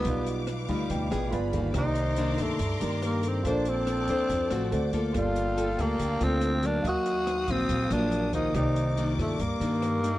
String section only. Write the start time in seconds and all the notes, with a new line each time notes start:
0.04 B4 F5 D6
1.31 G#4 B5
1.72 A#5 C6 D6
3.45 C5 A5 D6
4.72 F#5 D6
5.13 F5 G5 A5
6.84 F5 D#6
8.52 A#4 D6